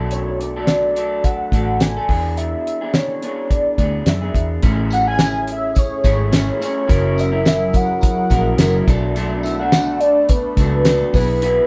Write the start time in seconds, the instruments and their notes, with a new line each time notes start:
Already playing: picked electric bass B1, clean electric guitar B2 F#3 A3 D4 A4
0.11 soft synth lead C#5, closed hi-hat
0.39 soft synth lead D5, closed hi-hat
0.56 clean electric guitar B2 F#3 A3 D4 A4
0.67 snare, closed hi-hat
0.95 clean electric guitar F#3 A3 D4 A4, closed hi-hat
1.24 soft synth lead F#5, kick, closed hi-hat
1.52 picked electric bass A1, clean electric guitar F#3 A3 D4 A4, kick, closed hi-hat
1.80 soft synth lead G#5, snare, closed hi-hat
1.97 clean electric guitar A3 D4 A4
2.08 picked electric bass E2, clean electric guitar E3 B3 D4 G#4, kick, open hi-hat
2.37 soft synth lead E5, closed hi-hat
2.67 closed hi-hat
2.81 clean electric guitar E3 B3 D4 G#4
2.94 soft synth lead C#5, snare, closed hi-hat
3.22 clean electric guitar E3 B3 D4 G#4, closed hi-hat
3.50 soft synth lead D5, kick, closed hi-hat
3.78 picked electric bass D2, clean electric guitar E3 B3 D4 G#4, kick, closed hi-hat
4.06 picked electric bass F#2, soft synth lead E5, snare, closed hi-hat
4.21 clean electric guitar B3 D4 G#4
4.34 picked electric bass E2, kick, closed hi-hat
4.63 picked electric bass A1, clean electric guitar A3 C#4 E4 G#4, analog synth pad A3 C#4 G#4, kick, closed hi-hat, tambourine
4.90 soft synth lead F#5, closed hi-hat, tambourine
5.07 clean electric guitar C#4 E4 G#4, soft synth lead G#5
5.19 snare, closed hi-hat, tambourine
5.47 closed hi-hat
5.52 soft synth lead E5
5.75 soft synth lead C#5, kick, closed hi-hat, tambourine
6.04 picked electric bass G#1, clean electric guitar A3 C#4 E4 G#4, kick, closed hi-hat, tambourine
6.31 clean electric guitar A3 C#4 E4 G#4, snare, closed hi-hat, tambourine
6.60 clean electric guitar A3 C#4 E4 G#4, closed hi-hat, tambourine
6.65 soft synth lead C#5
6.87 picked electric bass F#1, clean electric guitar F#3 C#4 E4 A#4, analog synth pad F#3 E4 G#4 A#4, kick, closed hi-hat, tambourine
6.91 soft synth lead C#5
7.18 soft synth lead E5, closed hi-hat, tambourine
7.32 clean electric guitar C#4 E4 A#4
7.45 soft synth lead E5, snare, closed hi-hat, tambourine
7.73 soft synth lead F#5, kick, closed hi-hat, tambourine
8.01 kick, closed hi-hat, tambourine
8.05 soft synth lead F#5
8.30 picked electric bass A#1, clean electric guitar F#3 C#4 E4 A#4, kick, closed hi-hat, tambourine
8.58 picked electric bass F#1, clean electric guitar F#3 C#4 E4 A#4, snare, closed hi-hat, tambourine
8.86 picked electric bass B1, clean electric guitar F#3 A3 D4 A4, analog synth pad A3 B3 D4, kick, closed hi-hat, tambourine
9.16 clean electric guitar B2 F#3 A3 D4 A4, closed hi-hat, tambourine
9.43 soft synth lead E5, closed hi-hat, tambourine
9.59 clean electric guitar A3 D4 A4, soft synth lead F#5
9.72 snare, closed hi-hat, tambourine
10.00 soft synth lead D5, closed hi-hat
10.28 soft synth lead B4, kick, closed hi-hat, tambourine
10.57 picked electric bass C#2, clean electric guitar F#3 A3 D4 A4, kick, closed hi-hat, tambourine
10.85 clean electric guitar F#3 A3 D4 A4, snare, closed hi-hat, tambourine
11.14 picked electric bass B1, clean electric guitar E3 B3 E4 G#4, analog synth pad E4 G#4, soft synth lead B4, kick, open hi-hat, tambourine
11.42 clean electric guitar B2 E3 B3 E4 G#4, soft synth lead B4, closed hi-hat